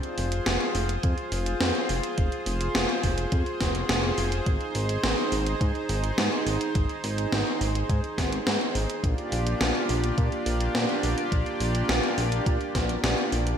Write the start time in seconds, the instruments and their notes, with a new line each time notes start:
Already playing: analog synth pad F4 G#4 C5
0.03 closed hi-hat
0.18 analog synth bass F1, open hi-hat
0.32 closed hi-hat
0.46 analog synth bass F1, snare, closed hi-hat
0.61 closed hi-hat
0.75 analog synth bass F1, open hi-hat
0.89 closed hi-hat
1.03 analog synth bass F2, kick, closed hi-hat
1.18 closed hi-hat
1.32 analog synth bass F1, open hi-hat
1.46 closed hi-hat
1.61 analog synth bass F2, snare, closed hi-hat
1.75 closed hi-hat
1.89 analog synth bass F1, open hi-hat
2.03 closed hi-hat
2.18 analog synth bass F1, kick, closed hi-hat
2.32 closed hi-hat
2.46 analog synth bass F1, open hi-hat
2.61 closed hi-hat
2.75 analog synth bass F1, snare, closed hi-hat
2.89 closed hi-hat
3.03 analog synth bass F1, kick, open hi-hat
3.18 closed hi-hat
3.32 analog synth bass F2, kick, closed hi-hat
3.46 closed hi-hat
3.61 analog synth bass F1, kick, snare, open hi-hat
3.75 closed hi-hat
3.89 analog synth bass F1, snare, closed hi-hat
4.03 closed hi-hat
4.18 analog synth bass F1, open hi-hat
4.32 closed hi-hat
4.46 analog synth bass G#1, analog synth pad D#4, kick, closed hi-hat
4.61 closed hi-hat
4.75 analog synth bass G#1, open hi-hat
4.89 closed hi-hat
5.04 analog synth bass G#1, snare, closed hi-hat
5.18 closed hi-hat
5.32 analog synth bass G#1, open hi-hat
5.46 closed hi-hat
5.61 analog synth bass G#2, kick, closed hi-hat
5.75 closed hi-hat
5.89 analog synth bass G#1, open hi-hat
6.04 closed hi-hat
6.18 analog synth bass G#2, snare, closed hi-hat
6.32 closed hi-hat
6.47 analog synth bass G#1, open hi-hat
6.61 closed hi-hat
6.75 analog synth bass G#1, kick, closed hi-hat
6.89 closed hi-hat
7.04 analog synth bass G#1, open hi-hat
7.18 closed hi-hat
7.32 analog synth bass G#1, snare, closed hi-hat
7.47 closed hi-hat
7.61 analog synth bass G#1, open hi-hat
7.75 closed hi-hat
7.89 analog synth bass G#2, kick, closed hi-hat
8.04 closed hi-hat
8.18 analog synth bass G#1, kick, snare, open hi-hat
8.32 closed hi-hat
8.47 analog synth bass G#2, snare, closed hi-hat
8.61 closed hi-hat
8.75 analog synth bass G#1, open hi-hat
8.90 closed hi-hat
9.04 analog synth bass A#1, analog synth pad A#3 D4 F4 G4 D5, kick, closed hi-hat
9.18 closed hi-hat
9.32 analog synth bass A#1, open hi-hat
9.47 closed hi-hat
9.61 analog synth bass A#1, snare, closed hi-hat
9.75 closed hi-hat
9.89 analog synth bass A#1, open hi-hat
10.04 closed hi-hat
10.18 analog synth bass A#2, kick, closed hi-hat
10.32 closed hi-hat
10.46 analog synth bass A#1, open hi-hat
10.61 closed hi-hat
10.75 analog synth bass A#2, snare, closed hi-hat
10.89 closed hi-hat
11.03 analog synth bass A#1, open hi-hat
11.18 closed hi-hat
11.32 analog synth bass A#1, kick, closed hi-hat
11.46 closed hi-hat
11.60 analog synth bass A#1, open hi-hat
11.75 closed hi-hat
11.89 analog synth bass A#1, snare, closed hi-hat
12.03 closed hi-hat
12.18 analog synth bass A#1, open hi-hat
12.32 closed hi-hat
12.46 analog synth bass A#2, kick, closed hi-hat
12.61 closed hi-hat
12.75 analog synth bass A#1, kick, snare, open hi-hat
12.89 closed hi-hat
13.04 analog synth bass A#1, snare, closed hi-hat
13.18 closed hi-hat
13.32 analog synth bass A#1, open hi-hat
13.47 closed hi-hat